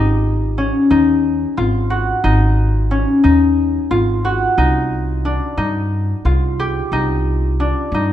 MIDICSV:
0, 0, Header, 1, 3, 480
1, 0, Start_track
1, 0, Tempo, 668747
1, 1609, Time_signature, 7, 3, 24, 8
1, 5834, End_track
2, 0, Start_track
2, 0, Title_t, "Harp"
2, 0, Program_c, 0, 46
2, 0, Note_on_c, 0, 60, 64
2, 0, Note_on_c, 0, 63, 67
2, 0, Note_on_c, 0, 65, 53
2, 0, Note_on_c, 0, 67, 55
2, 408, Note_off_c, 0, 60, 0
2, 415, Note_on_c, 0, 61, 58
2, 646, Note_off_c, 0, 63, 0
2, 649, Note_on_c, 0, 63, 62
2, 785, Note_off_c, 0, 65, 0
2, 1130, Note_on_c, 0, 65, 66
2, 1365, Note_on_c, 0, 66, 61
2, 1408, Note_off_c, 0, 65, 0
2, 1408, Note_off_c, 0, 67, 0
2, 1604, Note_off_c, 0, 63, 0
2, 1606, Note_on_c, 0, 63, 68
2, 2085, Note_off_c, 0, 61, 0
2, 2088, Note_on_c, 0, 61, 59
2, 2320, Note_off_c, 0, 63, 0
2, 2323, Note_on_c, 0, 63, 63
2, 2805, Note_on_c, 0, 65, 68
2, 2848, Note_off_c, 0, 66, 0
2, 3048, Note_on_c, 0, 66, 62
2, 3091, Note_off_c, 0, 65, 0
2, 3283, Note_off_c, 0, 63, 0
2, 3286, Note_on_c, 0, 63, 71
2, 3768, Note_on_c, 0, 62, 56
2, 3812, Note_off_c, 0, 61, 0
2, 3812, Note_off_c, 0, 63, 0
2, 4002, Note_on_c, 0, 63, 63
2, 4045, Note_off_c, 0, 62, 0
2, 4489, Note_on_c, 0, 65, 67
2, 4532, Note_off_c, 0, 66, 0
2, 4734, Note_on_c, 0, 67, 60
2, 4968, Note_off_c, 0, 63, 0
2, 4971, Note_on_c, 0, 63, 70
2, 5454, Note_on_c, 0, 62, 58
2, 5497, Note_off_c, 0, 63, 0
2, 5701, Note_on_c, 0, 63, 62
2, 5744, Note_off_c, 0, 62, 0
2, 5834, Note_off_c, 0, 63, 0
2, 5834, Note_off_c, 0, 65, 0
2, 5834, Note_off_c, 0, 67, 0
2, 5834, End_track
3, 0, Start_track
3, 0, Title_t, "Upright bass"
3, 0, Program_c, 1, 32
3, 0, Note_on_c, 1, 32, 72
3, 507, Note_off_c, 1, 32, 0
3, 653, Note_on_c, 1, 39, 80
3, 1034, Note_off_c, 1, 39, 0
3, 1132, Note_on_c, 1, 32, 73
3, 1513, Note_off_c, 1, 32, 0
3, 1608, Note_on_c, 1, 32, 76
3, 2183, Note_off_c, 1, 32, 0
3, 2329, Note_on_c, 1, 39, 85
3, 2712, Note_off_c, 1, 39, 0
3, 2805, Note_on_c, 1, 32, 73
3, 3189, Note_off_c, 1, 32, 0
3, 3285, Note_on_c, 1, 36, 82
3, 3861, Note_off_c, 1, 36, 0
3, 4001, Note_on_c, 1, 43, 77
3, 4387, Note_off_c, 1, 43, 0
3, 4485, Note_on_c, 1, 36, 68
3, 4869, Note_off_c, 1, 36, 0
3, 4965, Note_on_c, 1, 36, 74
3, 5541, Note_off_c, 1, 36, 0
3, 5683, Note_on_c, 1, 43, 75
3, 5834, Note_off_c, 1, 43, 0
3, 5834, End_track
0, 0, End_of_file